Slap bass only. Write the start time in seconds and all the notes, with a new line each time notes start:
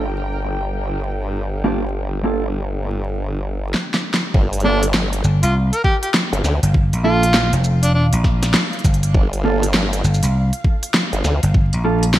5.24 G1
5.43 C2
6.63 G1
6.93 A#1
7.53 F1
8.13 A#1
8.84 G1
10.04 G1
10.23 C2
11.43 G1
11.74 A#1